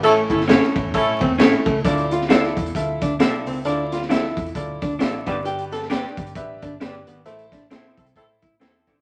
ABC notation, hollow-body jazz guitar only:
X:1
M:4/4
L:1/8
Q:"Swing" 1/4=133
K:Ddor
V:1 name="Hollow-body jazz guitar"
A, E ^C2 z =C z A, | D F E2 z D z C | D F E2 z D z B, | G A G2 z D z B, |
A, D C2 z E z D |]